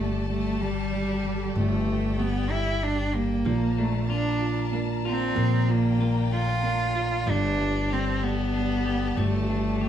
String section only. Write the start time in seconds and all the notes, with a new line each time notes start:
Already playing: G4 A4 D5 A5
1.56 G5
3.45 F4 D5 A5 A#5
5.38 G5
7.27 G4 A4 A5